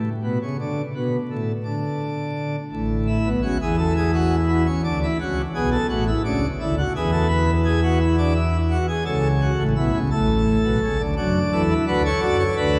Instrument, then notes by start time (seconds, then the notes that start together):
pipe organ
0.24 B2
0.42 C#3
0.60 D3
0.95 B2
1.30 A2
1.64 D3
2.71 A1 A2
3.07 E4
3.26 B1 B2
3.42 C#2 C#3 F#4
3.61 E2 E3 G#4
3.78 A4
3.96 G#4
4.14 F#4
4.48 E4
4.66 C#4
4.84 D2 D3 D4
5.03 E4
5.20 C#2 C#3 F#4
5.55 B1 B2 G#4
5.72 A4
5.89 A1 A2 F#4
6.07 E4
6.25 C#2 C#3 D4
6.60 D2 D3 E4
6.78 F#4
6.96 E2 E3 G#4
7.12 A4
7.28 B4
7.65 G#4
7.83 F#4
8.01 E4
8.18 D4
8.35 E4
8.71 F#4
8.88 G#4
9.06 C#2 C#3 A4
9.41 F#4
9.57 A1 A2
9.76 B1 B2 E4
9.94 C#2 C#3
10.11 A1 A2 A4
10.64 B1 B2
10.82 C#2 C#3
10.99 D2 D3
11.17 F#2 F#3 D4
11.52 E2 E3 A4
11.70 E4
11.87 D2 D3 F#4 B4
12.05 A4 C#5
12.21 F#2 F#3 D5
12.39 C#5
12.57 D2 D3 B4